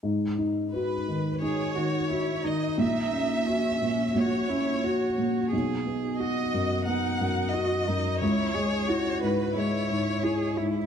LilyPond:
<<
  \new Staff \with { instrumentName = "Violin section" } { \time 4/4 \key gis \minor \tempo 4 = 88 r4 b'4 cis''4. dis''8 | e''2 cis''2 | r4 dis''4 fis''4 dis''4 | cis''4. b'8 cis''4. r8 | }
  \new Staff \with { instrumentName = "Cello" } { \time 4/4 \key gis \minor r2 gis'8 fis'8 e'8 dis'8~ | dis'4 cis'8 cis'8 fis'8 e'8 fis'4 | gis'4 fis'4 dis'4 fis'8 dis'8 | e'8 gis'8 fis'4 e'4 gis'8 e'8 | }
  \new Staff \with { instrumentName = "Felt piano" } { \clef bass \time 4/4 \key gis \minor gis,8 dis'8 fis'8 dis8 dis'8 dis8 fis'8 dis8 | ais,,8 cis'8 fis'8 ais,8 ais,,8 cis'8 fis'8 ais,8 | b,,8 b8 fis'8 fis,8 b8 fis,8 fis'8 fis,8 | cis,8 gis8 e'8 gis,8 gis8 gis,8 e'8 gis,8 | }
>>